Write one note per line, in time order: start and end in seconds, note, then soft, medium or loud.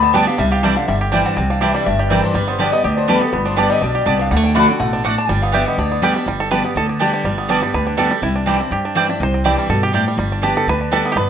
0.00 0.24 D2 medium
0.00 0.13 D3 medium
0.00 0.13 G3 medium
0.00 0.36 B3 medium
0.00 0.26 D4 medium
0.00 0.51 G4 medium
0.00 0.14 A5 loud
0.14 0.27 D3 medium
0.14 0.38 G3 medium
0.14 0.27 G3 medium
0.14 0.24 B3 medium
0.14 0.27 B3 loud
0.14 0.24 G4 loud
0.14 0.26 G4 loud
0.14 0.24 D5 loud
0.14 0.28 G5 medium
0.14 0.24 A5 loud
0.27 0.39 B3 medium
0.27 1.11 D4 medium
0.27 0.38 G4 medium
0.27 0.38 F5 medium
0.38 0.73 C2 loud
0.38 0.86 C3 medium
0.38 0.63 G3 medium
0.38 0.51 E5 medium
0.52 1.01 G4 medium
0.52 0.63 F5 loud
0.63 0.76 E3 medium
0.63 0.76 G3 medium
0.63 0.88 G3 medium
0.63 0.73 C4 medium
0.63 0.76 D4 loud
0.63 0.73 E4 loud
0.63 0.75 E4 medium
0.63 0.73 D5 medium
0.63 0.74 G5 loud
0.63 0.76 A5 loud
0.76 1.10 D3 medium
0.76 0.88 D4 medium
0.76 0.87 E4 medium
0.76 0.87 F5 medium
0.88 1.22 G1 loud
0.88 1.35 G2 loud
0.88 1.74 G3 medium
0.88 0.96 E5 medium
1.01 1.61 G4 medium
1.12 1.36 E3 loud
1.12 1.36 G3 loud
1.12 1.22 C4 loud
1.12 1.50 D4 medium
1.12 1.37 D4 loud
1.12 1.22 E4 medium
1.12 1.37 E4 loud
1.12 1.22 D5 loud
1.12 1.22 G5 loud
1.12 1.25 A5 medium
1.25 1.36 C4 medium
1.25 1.36 F#5 loud
1.37 1.71 C2 loud
1.37 1.84 C3 loud
1.37 1.72 C4 medium
1.37 1.50 G5 loud
1.50 1.86 D4 medium
1.50 1.61 F5 loud
1.61 1.85 E3 medium
1.61 1.85 G3 medium
1.61 1.71 C4 medium
1.61 1.85 D4 loud
1.61 1.71 E4 medium
1.61 1.86 E4 loud
1.61 1.99 G4 medium
1.61 1.71 D5 loud
1.61 1.74 E5 loud
1.61 1.72 G5 loud
1.74 2.34 G3 medium
1.74 1.85 D5 medium
1.86 2.20 G1 medium
1.86 2.33 G2 medium
1.86 2.23 D4 medium
1.86 1.99 E5 loud
1.99 2.33 G4 medium
1.99 2.10 D5 loud
2.10 2.34 E3 medium
2.10 2.34 G3 medium
2.10 2.35 C4 medium
2.10 2.20 C4 medium
2.10 2.34 D4 loud
2.10 2.20 E4 medium
2.10 2.34 E4 medium
2.10 2.23 A#4 medium
2.10 2.21 D5 loud
2.10 2.21 G5 loud
2.24 2.97 D4 medium
2.24 2.35 C5 loud
2.34 2.69 G1 medium
2.34 2.81 G2 medium
2.34 2.70 G3 medium
2.34 2.48 B4 medium
2.48 2.72 B3 medium
2.48 2.59 C5 loud
2.59 2.72 D3 medium
2.59 2.72 G3 medium
2.59 2.69 B3 medium
2.59 2.72 B3 medium
2.59 2.69 G4 medium
2.59 2.83 G4 medium
2.59 2.70 G4 loud
2.59 2.69 D5 loud
2.59 2.72 D5 medium
2.59 2.69 A5 loud
2.71 2.84 B3 soft
2.71 3.07 B3 medium
2.71 2.83 G4 medium
2.71 2.83 D#5 loud
2.83 3.18 D2 medium
2.83 3.07 D3 medium
2.83 3.07 G4 medium
2.83 2.97 D5 medium
2.97 3.45 D4 medium
2.97 3.09 C5 medium
3.08 3.21 D3 medium
3.08 3.21 G3 loud
3.08 3.18 B3 loud
3.08 3.22 B3 loud
3.08 3.43 G4 medium
3.08 3.18 G4 medium
3.08 3.20 G4 loud
3.08 3.22 B4 medium
3.08 3.18 D5 loud
3.08 3.19 A5 loud
3.21 3.32 B3 medium
3.21 3.33 B3 soft
3.21 3.32 G4 medium
3.21 3.33 A4 medium
3.32 3.67 G1 loud
3.32 3.79 G2 medium
3.32 3.68 B3 medium
3.32 3.46 B4 medium
3.45 3.81 D4 medium
3.45 3.57 C5 medium
3.56 3.80 D3 medium
3.56 3.81 G3 loud
3.56 3.67 B3 medium
3.56 3.81 B3 loud
3.56 3.67 G4 medium
3.56 3.92 G4 medium
3.56 3.81 G4 loud
3.56 3.67 D5 loud
3.56 3.70 D5 medium
3.56 3.67 A5 medium
3.70 4.04 G3 medium
3.70 3.82 D#5 loud
3.82 4.03 B1 medium
3.82 4.05 B2 medium
3.82 4.19 D4 medium
3.82 4.18 D5 medium
3.95 4.29 G4 medium
4.06 4.27 C2 medium
4.06 4.30 C3 loud
4.06 4.16 B3 medium
4.06 4.31 B3 medium
4.06 4.16 G4 loud
4.06 4.16 D5 loud
4.06 4.16 A5 loud
4.19 4.43 D4 medium
4.19 4.31 F5 loud
4.31 4.65 D2 loud
4.31 4.54 D3 medium
4.31 4.36 G3 medium
4.31 4.44 F#5 medium
4.36 4.54 A3 medium
4.44 4.93 D4 medium
4.44 4.54 G5 loud
4.54 4.68 D3 medium
4.54 4.65 A3 medium
4.54 4.79 A3 medium
4.54 4.69 A3 loud
4.54 4.69 D4 loud
4.54 4.65 F#4 medium
4.54 4.68 F#4 loud
4.54 4.65 D5 loud
4.54 4.65 F#5 loud
4.54 4.68 B5 loud
4.68 5.02 D3 medium
4.68 4.80 D4 medium
4.68 4.80 F#4 medium
4.68 4.79 G5 loud
4.80 5.14 A1 medium
4.80 5.03 B2 medium
4.80 5.15 A3 medium
4.80 4.88 F#5 loud
4.93 5.04 D4 medium
5.04 5.28 A2 medium
5.04 5.14 A3 medium
5.04 5.18 D4 medium
5.04 5.14 F#4 loud
5.04 5.14 D5 loud
5.04 5.15 F#5 loud
5.18 5.43 D4 medium
5.18 5.29 A5 loud
5.29 5.63 G1 loud
5.29 5.76 G2 medium
5.29 5.64 G3 medium
5.29 5.42 G5 medium
5.42 5.67 B3 medium
5.42 5.53 F5 medium
5.52 5.77 D3 loud
5.52 5.77 G3 medium
5.52 5.62 B3 loud
5.52 5.77 B3 medium
5.52 5.63 G4 medium
5.52 5.89 G4 medium
5.52 5.77 G4 loud
5.52 5.63 D5 loud
5.52 5.67 E5 loud
5.52 5.63 G5 loud
5.67 5.90 B3 medium
5.67 5.78 D#5 loud
5.78 6.12 D2 medium
5.78 6.00 D3 medium
5.78 6.13 D4 medium
5.78 6.19 D5 medium
5.92 6.25 B3 medium
6.02 6.15 D3 medium
6.02 6.15 G3 loud
6.02 6.27 G3 medium
6.02 6.12 B3 medium
6.02 6.15 B3 medium
6.02 6.12 G4 loud
6.02 6.14 G4 medium
6.02 6.12 D5 medium
6.02 6.12 G5 loud
6.15 6.27 B3 medium
6.15 6.27 D4 medium
6.15 6.26 G4 medium
6.26 6.60 G1 medium
6.26 6.73 G2 medium
6.26 6.80 G3 medium
6.40 6.51 A4 medium
6.51 6.64 D3 medium
6.51 6.64 G3 medium
6.51 6.61 B3 medium
6.51 6.64 B3 medium
6.51 6.61 G4 medium
6.51 6.63 G4 medium
6.51 6.77 B4 loud
6.51 6.61 D5 loud
6.51 6.61 A5 loud
6.64 6.98 B3 medium
6.64 6.76 B3 soft
6.64 6.75 G4 medium
6.75 7.09 D2 medium
6.75 6.99 D3 medium
6.75 6.89 A4 loud
6.89 7.13 D4 medium
6.99 7.24 D3 medium
6.99 7.24 G3 loud
6.99 7.09 B3 medium
6.99 7.24 B3 medium
6.99 7.10 G4 loud
6.99 7.24 G4 loud
6.99 7.36 G4 medium
6.99 7.10 D5 medium
6.99 7.10 A5 loud
7.14 7.49 D4 medium
7.24 7.58 G1 loud
7.24 7.72 G2 medium
7.24 7.62 G3 medium
7.38 7.71 B3 medium
7.48 7.62 D3 loud
7.48 7.62 G3 loud
7.48 7.58 B3 medium
7.48 7.62 B3 loud
7.48 7.86 D4 medium
7.48 7.59 G4 medium
7.48 7.61 G4 loud
7.48 7.59 D5 medium
7.48 7.59 A5 loud
7.62 8.01 G3 medium
7.62 7.74 B3 medium
7.62 7.73 G4 medium
7.74 8.08 D2 medium
7.74 7.96 D3 medium
7.74 7.97 B4 loud
7.87 8.26 D4 medium
7.97 8.10 D3 loud
7.97 8.11 G3 loud
7.97 8.07 B3 medium
7.97 8.11 B3 loud
7.97 8.08 G4 medium
7.97 8.10 G4 loud
7.97 8.23 A4 loud
7.97 8.08 D5 loud
7.97 8.08 A5 loud
8.11 9.51 G3 medium
8.11 8.23 B3 soft
8.11 8.22 G4 medium
8.22 8.56 C2 loud
8.22 8.69 C3 medium
8.22 8.35 E4 medium
8.36 8.85 D4 medium
8.46 8.59 E3 medium
8.46 8.60 G3 loud
8.46 8.56 C4 medium
8.46 8.59 D4 loud
8.46 8.56 E4 medium
8.46 8.58 E4 medium
8.46 8.72 G4 medium
8.46 8.57 D5 loud
8.46 8.57 G5 loud
8.59 8.94 C4 medium
8.59 8.71 D4 medium
8.59 8.70 E4 medium
8.71 9.18 G2 medium
8.71 9.05 G2 medium
8.71 9.46 G4 medium
8.85 9.09 D4 medium
8.95 9.08 E3 loud
8.95 9.09 G3 loud
8.95 9.05 C4 loud
8.95 9.31 C4 medium
8.95 9.09 D4 loud
8.95 9.05 E4 loud
8.95 9.08 E4 medium
8.95 9.06 D5 loud
8.95 9.06 G5 loud
9.09 9.23 D4 medium
9.09 9.21 D4 soft
9.09 9.20 E4 medium
9.20 9.54 C2 loud
9.20 9.67 C3 medium
9.20 9.45 C5 loud
9.34 9.67 C4 medium
9.44 9.68 E3 medium
9.44 9.68 G3 medium
9.44 9.54 C4 medium
9.44 9.69 D4 loud
9.44 9.54 E4 medium
9.44 9.69 E4 medium
9.44 9.69 G4 medium
9.44 9.55 D5 loud
9.44 9.55 G5 loud
9.58 10.07 G3 medium
9.69 10.03 G2 medium
9.69 9.93 B2 medium
9.69 9.83 A4 medium
9.83 9.93 G4 medium
9.93 10.17 A2 medium
9.93 10.03 C4 medium
9.93 10.03 E4 medium
9.93 10.19 G4 medium
9.93 10.04 D5 loud
9.93 10.04 G5 medium
10.08 10.17 G3 medium
10.17 10.52 G1 loud
10.17 10.65 G2 medium
10.17 10.54 G3 medium
10.32 10.81 D4 medium
10.42 10.66 D3 medium
10.42 10.66 G3 medium
10.42 10.52 B3 loud
10.42 10.66 B3 medium
10.42 10.52 G4 medium
10.42 10.78 G4 medium
10.42 10.67 G4 loud
10.42 10.53 D5 medium
10.42 10.53 A5 loud
10.57 10.67 A4 loud
10.67 11.01 D2 medium
10.67 10.90 D3 medium
10.67 10.94 B4 loud
10.81 11.29 D4 medium
10.91 11.15 D3 medium
10.91 11.15 G3 medium
10.91 11.01 B3 loud
10.91 11.16 B3 loud
10.91 11.01 G4 loud
10.91 11.16 G4 loud
10.91 11.12 A4 loud
10.91 11.02 D5 loud
10.91 11.02 A5 loud
11.05 11.30 B3 medium
11.12 11.30 G1 loud
11.12 11.17 G4 medium
11.17 11.30 G2 medium
11.17 11.30 B4 loud